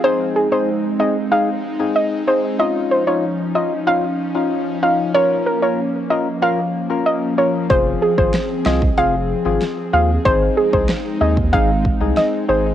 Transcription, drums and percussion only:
7.70 kick loud
7.70 closed hi-hat medium
8.18 kick loud
8.34 cross-stick loud
8.34 snare loud
8.34 closed hi-hat medium
8.66 cross-stick medium
8.66 snare loud
8.82 kick loud
8.98 closed hi-hat medium
9.62 snare medium
9.62 closed hi-hat medium
10.25 kick loud
10.25 closed hi-hat medium
10.73 kick loud
10.89 cross-stick medium
10.89 snare loud
10.89 closed hi-hat medium
11.37 kick loud
11.53 kick loud
11.53 closed hi-hat medium
11.85 kick loud
12.17 snare medium
12.17 closed hi-hat medium

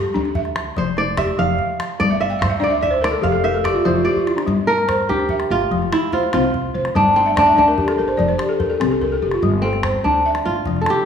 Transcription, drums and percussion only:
0.05 calabash click soft
0.25 calabash click soft
0.35 calabash thump medium
0.45 calabash click soft
0.56 calabash click medium
0.77 calabash thump medium
0.77 calabash click soft
0.97 calabash click soft
1.17 calabash thump medium
1.17 calabash click medium
1.28 calabash click soft
1.59 calabash thump medium
1.80 calabash click medium
2.00 calabash thump medium
2.22 calabash click soft
2.42 calabash thump medium
2.42 calabash click medium
2.63 calabash click soft
2.83 calabash thump medium
2.83 calabash click soft
2.94 calabash click soft
3.04 calabash click medium
3.24 calabash thump medium
3.24 calabash click soft
3.45 calabash click soft
3.65 calabash thump medium
3.65 calabash click medium
3.86 calabash click soft
4.06 calabash thump soft
4.16 calabash thump soft
4.27 calabash click soft
4.38 calabash click soft
4.47 calabash thump medium
4.78 calabash click soft
4.89 calabash thump medium
4.89 calabash click medium
5.19 calabash click soft
5.29 calabash thump medium
5.40 calabash click soft
5.62 calabash click soft
5.72 calabash thump medium
5.82 calabash click soft
5.93 calabash click medium
6.12 calabash thump medium
6.23 calabash click soft
6.33 calabash click medium
6.44 calabash click soft
6.54 calabash thump medium
6.85 calabash click soft
6.96 calabash thump medium
7.27 calabash click soft
7.37 calabash thump medium
7.37 calabash click medium
7.68 calabash click soft
7.78 calabash thump medium
7.88 calabash click medium
8.09 calabash click soft
8.19 calabash thump medium
8.29 calabash click soft
8.39 calabash click medium
8.60 calabash thump medium
8.71 calabash click soft
8.81 calabash click medium
8.92 calabash click soft
9.02 calabash thump medium
9.32 calabash click soft
9.42 calabash thump medium
9.73 calabash click soft
9.83 calabash thump medium
9.83 calabash click medium
10.35 calabash click soft
10.56 calabash click soft
10.66 calabash thump medium
10.76 calabash click soft
10.86 calabash click medium

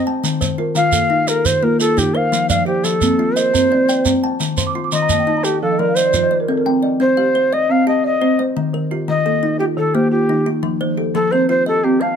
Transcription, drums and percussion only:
0.24 shekere medium
0.42 shekere medium
0.76 shekere medium
0.92 shekere medium
1.28 shekere medium
1.45 shekere medium
1.80 shekere medium
1.98 shekere medium
2.33 shekere medium
2.50 shekere medium
2.84 shekere medium
3.01 shekere medium
3.37 shekere medium
3.55 shekere medium
3.89 shekere medium
4.05 shekere medium
4.40 shekere medium
4.57 shekere medium
4.92 shekere medium
5.09 shekere medium
5.44 shekere medium
5.96 shekere medium
6.14 shekere medium

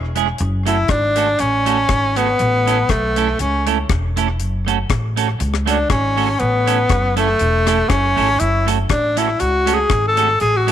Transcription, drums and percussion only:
0.16 closed hi-hat medium
0.38 closed hi-hat medium
0.67 closed hi-hat medium
0.88 kick loud
0.88 cross-stick loud
0.88 closed hi-hat medium
1.16 closed hi-hat medium
1.39 closed hi-hat medium
1.66 closed hi-hat medium
1.89 kick loud
1.89 cross-stick loud
1.89 closed hi-hat medium
2.16 closed hi-hat medium
2.39 closed hi-hat medium
2.67 closed hi-hat medium
2.89 kick loud
2.89 cross-stick loud
2.89 closed hi-hat medium
3.16 closed hi-hat medium
3.39 closed hi-hat medium
3.67 closed hi-hat medium
3.89 kick loud
3.89 cross-stick loud
3.89 closed hi-hat medium
4.17 closed hi-hat medium
4.40 closed hi-hat medium
4.68 closed hi-hat medium
4.90 kick loud
4.90 cross-stick loud
4.90 closed hi-hat medium
5.17 closed hi-hat medium
5.40 closed hi-hat medium
5.54 cross-stick medium
5.68 closed hi-hat medium
5.90 kick loud
5.90 cross-stick loud
5.90 closed hi-hat medium
6.17 open hi-hat medium
6.40 closed hi-hat medium
6.68 closed hi-hat medium
6.89 kick loud
6.89 cross-stick loud
6.89 closed hi-hat medium
7.17 closed hi-hat medium
7.39 closed hi-hat medium
7.67 cross-stick medium
7.67 closed hi-hat medium
7.90 kick loud
7.90 cross-stick loud
7.90 closed hi-hat medium
8.17 open hi-hat medium
8.40 closed hi-hat medium
8.68 closed hi-hat medium
8.89 kick loud
8.89 cross-stick loud
8.89 closed hi-hat medium
9.17 closed hi-hat medium
9.40 closed hi-hat medium
9.67 closed hi-hat loud
9.90 kick loud
9.90 cross-stick loud
9.90 closed hi-hat medium
10.17 closed hi-hat medium
10.40 closed hi-hat medium
10.68 closed hi-hat medium

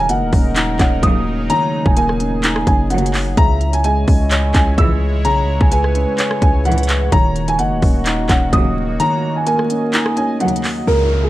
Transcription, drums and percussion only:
0.09 closed hi-hat medium
0.33 kick loud
0.33 open hi-hat medium
0.56 clap loud
0.56 closed hi-hat medium
0.79 kick loud
0.79 clap loud
0.79 closed hi-hat medium
1.03 kick loud
1.03 closed hi-hat medium
1.50 closed hi-hat medium
1.86 kick loud
1.97 closed hi-hat medium
2.09 cross-stick medium
2.20 closed hi-hat medium
2.44 clap loud
2.44 closed hi-hat medium
2.56 cross-stick loud
2.67 kick medium
2.67 closed hi-hat medium
2.90 closed hi-hat medium
2.98 closed hi-hat medium
3.06 closed hi-hat medium
3.14 clap loud
3.14 open hi-hat medium
3.37 kick loud
3.37 closed hi-hat medium
3.61 closed hi-hat medium
3.73 closed hi-hat medium
3.84 closed hi-hat medium
4.08 kick loud
4.08 open hi-hat medium
4.31 clap loud
4.31 closed hi-hat medium
4.54 kick loud
4.54 clap loud
4.54 closed hi-hat medium
4.78 kick loud
4.78 closed hi-hat medium
5.25 closed hi-hat medium
5.61 kick loud
5.72 closed hi-hat medium
5.84 cross-stick medium
5.95 closed hi-hat medium
6.18 clap loud
6.18 closed hi-hat medium
6.31 cross-stick medium
6.42 kick loud
6.42 closed hi-hat medium
6.65 closed hi-hat soft
6.72 closed hi-hat medium
6.78 closed hi-hat medium
6.83 closed hi-hat medium
6.89 clap loud
6.89 closed hi-hat medium
7.12 kick loud
7.12 closed hi-hat medium
7.36 closed hi-hat soft
7.48 closed hi-hat medium
7.59 closed hi-hat medium
7.82 kick loud
7.82 open hi-hat medium
8.06 clap loud
8.06 closed hi-hat medium
8.29 kick loud
8.29 clap loud
8.29 closed hi-hat medium
8.53 kick loud
8.53 closed hi-hat medium
9.00 closed hi-hat medium
9.47 closed hi-hat medium
9.59 cross-stick medium
9.70 closed hi-hat medium
9.93 clap loud
9.93 closed hi-hat medium
10.06 cross-stick loud
10.17 closed hi-hat medium
10.40 closed hi-hat medium
10.48 closed hi-hat medium
10.56 closed hi-hat medium
10.64 clap loud
10.64 open hi-hat medium

